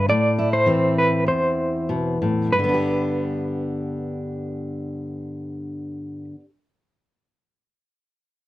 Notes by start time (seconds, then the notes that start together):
0.09 A2 D5
0.39 E4
0.53 C5
0.66 E3 C4
0.98 B4
1.26 E2 C5
1.89 B2
2.22 A2
2.52 G2 B4
2.59 D3
2.64 B3
2.69 D4
2.74 G4